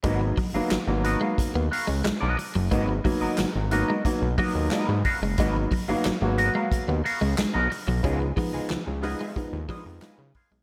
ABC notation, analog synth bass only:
X:1
M:4/4
L:1/16
Q:1/4=90
K:G#dor
V:1 name="Analog synth bass" clef=bass
G,,,2 z G,,, G,,, G,,,2 z2 D,, z C,, B,,, B,,, z F,,, | G,,,2 z G,,, G,,, G,,,2 z2 B,,, z D,, z G,, z F,,, | G,,,2 z G,,, G,,, G,,,2 z2 D,, z C,, B,,, B,,, z B,,, | C,,2 z C,, C,, C,,2 z2 D,, z E,, z C, z B,,, |]